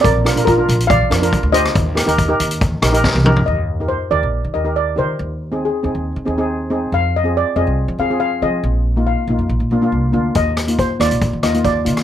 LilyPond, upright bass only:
\new Staff \with { instrumentName = "Upright bass" } { \clef bass \time 4/4 \key ees \major \tempo 4 = 140 bes,,8. bes,,8. bes,,4 f,8. d,8. | ees,8. ees,8. ees,4 bes,,8. c,8. | ees,4. ees,16 bes,,8 ees16 ees,4 ees8 | ees,4. ees,16 ees,8 ees16 ees,4 fes,8 |
f,4. f,16 c,8 f16 f,4 f8 | bes,,4. bes,,16 f,16 bes,,16 bes,16 bes,,8 c,8 d,8 | ees,4. ees,16 bes,,8 ees16 ees,4 ees8 | }